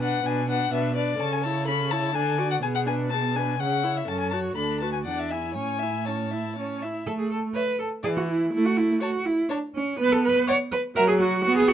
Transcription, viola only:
0.02 D4
0.24 D4
0.48 D4
0.72 D4
0.97 D4
1.19 C#4
1.45 E4
1.69 C#4
1.92 E4
2.15 D4
2.38 F#4
2.62 B3
2.86 D4
3.11 B3
3.35 D4
3.59 C#4
3.84 E4
4.08 C#4
4.33 F#4
4.58 D4
4.82 F#4
5.07 D4
5.32 E4
5.58 C#4
5.83 E4
6.08 C#4
6.33 E4
6.59 C#4
6.84 E4
7.09 A3
8.05 E3
8.53 A3
9.99 B3
10.97 F#3
11.45 B3

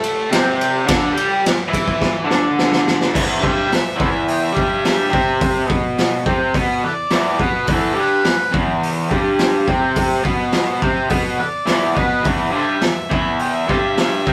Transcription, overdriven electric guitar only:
Already playing: A3 A4
0.30 C3 C4
0.86 D3 D4
1.12 G3 G4
1.40 muted overdriven electric guitar stroke
1.68 E3 E4
2.24 D3 D4
3.13 E2 E3
3.40 G2 G3
3.69 E2
3.96 E2 E3
4.52 G2 G3
5.09 C3 C4
5.67 B2 B3
6.26 C3 C4
6.55 B2 B3
6.83 E2
7.11 E2 E3
7.38 B2 B3
7.66 E2 E3
7.94 G2 G3
8.24 E2
8.51 E2 E3
9.10 G2 G3
9.66 C3 C4
10.23 B2 B3
10.81 C3 C4
11.09 B2 B3
11.38 E2
11.66 E2 E3
11.94 B2 B3
12.22 E2 E3
12.51 G2 G3
12.80 E2
13.09 E2 E3
13.67 G2 G3
14.26 C3 C4

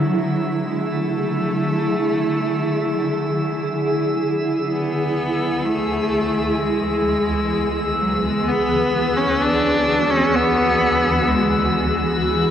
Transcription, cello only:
Already playing: F#3
0.65 G#3
0.88 A3
4.70 B3
5.65 A3
6.61 G#3
8.01 F#3
8.23 G#3
8.48 B3
9.17 C#4
9.42 D4
10.10 C#4
10.35 B3
11.27 G#3

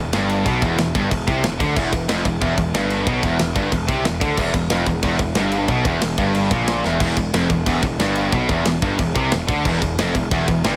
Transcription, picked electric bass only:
Already playing: E1
0.13 G1
0.46 B1
0.62 E1
0.80 E1
0.95 G1
1.11 E1
1.27 C2
1.44 E1
1.60 D2
1.76 E1
1.93 E1
2.09 F1
2.25 E1
2.42 E1
2.57 E1
2.74 G1
3.07 B1
3.23 E1
3.40 E1
3.56 G1
3.72 E1
3.88 C2
4.05 E1
4.21 D2
4.38 E1
4.54 E1
4.70 F1
4.86 E1
5.03 E1
5.19 E1
5.35 G1
5.68 B1
5.85 E1
6.02 E1
6.18 G1
6.51 A#1
6.84 E1
7.00 E1
7.17 E1
7.34 F1
7.50 E1
7.66 E1
7.83 E1
7.99 G1
8.33 B1
8.49 E1
8.66 E1
8.82 G1
8.99 E1
9.16 C2
9.33 E1
9.48 D2
9.65 E1
9.82 E1
9.99 F1
10.15 E1
10.31 E1
10.48 E1
10.65 G1

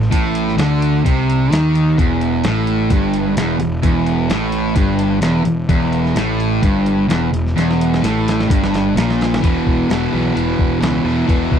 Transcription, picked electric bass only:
0.12 A1
0.58 D2
1.06 C2
1.52 D#2
1.98 E1
2.45 A1
2.90 G1
3.37 E1
3.61 E1
3.84 E1
4.30 A1
4.76 G1
5.22 E1
5.45 E1
5.69 E1
6.15 A1
6.63 G1
7.09 E1
7.33 E1
7.57 E1
8.04 A1
8.50 G1
8.96 A#1
9.44 E1
9.67 E1
9.90 E1
10.14 B1
10.36 E1
10.60 E1
10.82 C#2
11.05 E2
11.29 E1
11.52 C#2

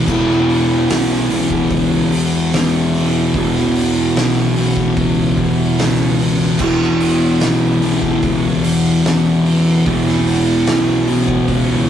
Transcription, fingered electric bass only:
0.07 E1
0.89 B1
1.71 C#2
2.12 E2
2.54 E2
3.34 E1
4.16 B1
4.97 C#2
5.38 E2
5.79 C#2
6.60 E1
7.43 B1
8.23 C#2
8.65 E2
9.05 E2
9.87 E1
10.68 B1
11.48 C#2

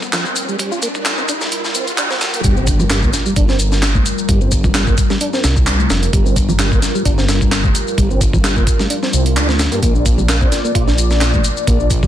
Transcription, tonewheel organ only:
0.13 F3
0.49 G3
0.59 G3
0.72 F4
0.82 A#3
1.18 C4
1.29 D4
1.75 C4
1.98 D4
2.10 C4
2.34 A#3
2.44 G3
2.57 C4
2.80 F3
2.90 G3
3.03 A#3
3.26 G3
3.37 D4
3.49 C4
4.29 G3
4.41 C4
4.64 F3
4.75 G3
4.87 A#3
5.10 G3
5.21 D4
5.34 C4
6.13 G3
6.26 C4
6.49 F3
6.59 G3
6.72 A#3
6.95 G3
7.05 D4
7.18 C4
7.98 G3
8.10 C4
8.34 F3
8.44 G3
8.57 A#3
8.79 G3
8.90 D4
9.03 C4
9.13 C4
9.36 D4
9.49 C4
9.72 A#3
9.82 A#3
9.95 D4
10.18 G3
10.29 A#3
10.41 C4
10.64 A#3
10.75 F4
10.87 D4
11.67 A#3
11.80 D4
12.03 G3

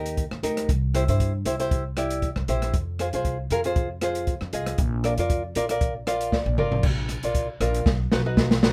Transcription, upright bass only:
Already playing: D#2
0.31 D#2
0.43 D2
0.69 C2
1.08 G2
1.45 C2
2.36 C2
2.48 A#1
2.74 F2
3.13 C2
3.51 F2
4.41 F2
4.53 C2
4.78 A#1
5.18 F2
5.56 A#1
6.46 A#1
6.58 G1
6.83 A#1
7.23 A#1
7.60 A#1
7.86 B1
8.12 B1

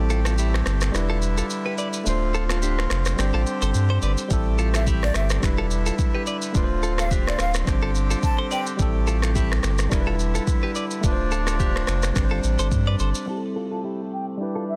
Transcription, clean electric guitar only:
0.10 F4 A4
0.26 F4 A4
0.38 E4 G4
1.10 F4 A4
1.38 F4 A4
1.66 G4 B4
1.78 B4 D5
2.34 F4 A4
2.50 F4 A4
2.63 D4 G4
3.34 F4 A4
3.62 A4 C5
3.90 A4 C5
4.03 B4 D5
4.59 F4 A4
4.74 F4 A4
4.87 E4 G4
5.58 F4 A4
5.86 F4 A4
6.15 G4 B4
6.27 B4 D5
6.83 F4 A4
6.98 F4 A4
7.11 D4 G4
7.83 F4 A4
8.11 F4 A4
8.39 A4 C5
8.51 B4 D5
9.07 F4 A4
9.23 F4 A4
9.35 E4 G4
10.07 F4 A4
10.35 F4 A4
10.63 G4 B4
10.76 B4 D5
11.32 F4 A4
11.47 F4 A4
11.60 D4 G4
12.31 F4 A4
12.59 A4 C5
12.87 B4 D5
13.00 A4 C5
13.56 F4 A4
13.71 F4 A4
13.84 E4 G4
14.56 F4 A4

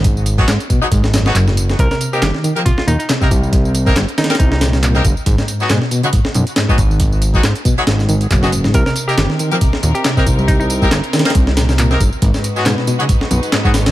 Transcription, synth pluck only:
1.80 A#4
1.91 A#4
2.13 G4
2.23 G4
2.65 F4
2.78 F4
2.88 D#4
2.99 D#4
4.18 D#4
4.29 D#4
4.39 D#4
4.52 D#4
8.75 A#4
8.86 A#4
9.08 G4
9.18 G4
9.95 G4
10.48 D#4
10.60 D#4

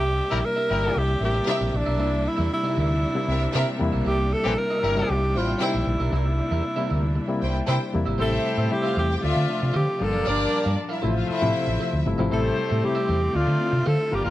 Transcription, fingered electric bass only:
Already playing: C2
0.32 A#1
0.71 G1
0.96 C2
1.21 A1
1.61 A#1
1.74 A#1
1.87 B1
2.00 C2
2.39 E2
2.77 D2
3.28 C2
3.55 C3
3.81 E2
3.94 B1
4.06 C2
4.45 A#1
4.83 G1
5.10 C2
5.36 A1
5.74 A#1
5.87 A#1
6.00 B1
6.12 C2
6.51 E2
6.91 D2
7.43 C2
7.68 C3
7.95 E2
8.06 G#1
8.18 A1
8.58 A2
8.97 E2
9.24 D2
9.36 D3
9.63 C3
9.76 D3
10.01 G1
10.14 F#1
10.28 G1
10.66 G2
11.04 A1
11.30 muted fingered electric bass stroke
11.42 A2
11.67 A1
11.93 D2
12.06 G1
12.19 G#1
12.32 A1
12.71 A2
13.09 E2
13.35 D2
13.47 D3
13.73 C3
13.87 D3
14.13 G1
14.25 F#1

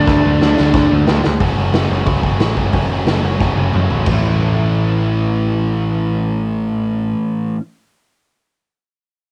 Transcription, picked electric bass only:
0.07 D2
0.26 D2
0.42 D2
0.60 D2
0.73 D2
0.92 D2
1.09 D2
1.26 D2
1.40 F#1
1.57 F#1
1.73 F#1
1.90 F#1
2.06 C#2
2.23 F#1
2.39 A1
2.56 F#1
2.73 F#1
2.90 F#1
3.07 F#1
3.23 F#1
3.40 F#1
3.56 F#1
3.75 F#2
3.92 A1
4.07 A1

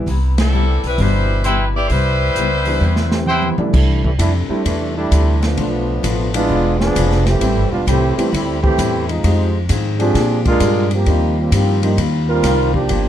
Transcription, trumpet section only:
1.44 E4 B4 C5 G5
3.27 E4 B4 C5 G5

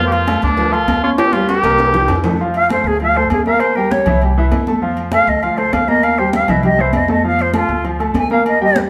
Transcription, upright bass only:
Already playing: F2
0.43 D2
0.88 D#2
1.63 C2
2.09 F2
2.84 D2
3.30 D#2
4.06 C2
4.51 F2
5.27 D2
5.73 D#2
6.48 C2
6.94 F2
7.69 D2
8.14 D#2

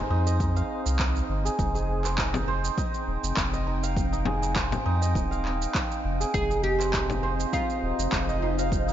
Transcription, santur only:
Already playing: G#4 C5 D#5 F5
0.10 D#4
0.26 D#5
0.40 D#4
0.56 F5
0.99 D#4
1.45 G#4
1.58 D#4
1.75 G#4
2.04 C5
2.18 D#4
2.48 C5
2.78 D#4
3.53 D#5
3.67 D#4
3.83 F5
4.13 D#4
4.26 G#4
4.42 D#4
4.56 C5
4.86 D#4
5.02 D#5
5.15 D#4
5.31 F5
5.74 D#4
6.20 G#4
6.34 D#4
6.50 G#4
6.80 C5
6.93 D#4
7.23 C5
7.53 D#4
8.29 D#5
8.42 D#4
8.58 F5
8.88 D#4

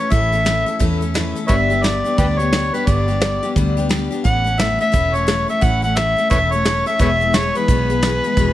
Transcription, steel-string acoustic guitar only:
Already playing: A4
0.00 A3 C#4
0.10 A2 E3 A3 C#4 A4
0.32 A3 C#4 A4
0.45 E3 A3 C#4 A4
0.66 A3 C#4 A4
0.79 A2 E3 A3 C#4 A4
1.01 A3 C#4 A4
1.14 E3 A3 C#4 A4
1.35 A3 C#4 A4
1.48 G2 D3 G3 B3 D4 G4
1.70 G3 B3 D4 G4
1.83 G3 B3 D4
2.04 G3 B3 D4 G4
2.18 G2 D3 G3 B3 D4 G4
2.39 G3 B3 D4 G4
2.52 G3 B3 D4 G4
2.74 G3 B3 D4 G4
2.87 G2 D3 G3 B3 D4 G4
3.08 G3 B3 D4 G4
3.20 G3 B3 D4 G4
3.43 G3 B3 D4 G4
3.56 G2 D3 G3 B3 D4 G4
3.77 G3 B3 D4 G4
3.89 G3 B3 D4 G4
4.11 G3 B3 D4 G4
4.24 A2 E3 A3 C#4 A4
4.44 A3 C#4 A4
4.58 E3 A3 C#4 A4
4.79 A3 C#4 A4
4.92 A2 E3 A3 C#4 A4
5.14 A3 C#4 A4
5.27 E3 A3 A4
5.48 A3 C#4 A4
5.61 A2 E3 A3 C#4 A4
5.82 A3 C#4 A4
5.96 E3 A3 C#4 A4
6.17 A3 C#4 A4
6.30 A2 E3 A3 C#4 A4
6.52 A3 C#4 A4
6.65 E3 A3 C#4 A4
6.86 A3 C#4 A4
6.99 E2 B2 E3 G#3 B3 G#4
7.20 E3 G#3 B3 G#4
7.33 E3 G#3 B3 G#4
7.55 E3 G#3 B3 G#4
7.68 E2 B2 E3 G#3 B3 G#4
7.90 E3 G#3 B3 G#4
8.02 E3 G#3 B3 G#4
8.24 E3 G#3 B3 G#4
8.37 E2 B2 E3 G#3 B3 G#4

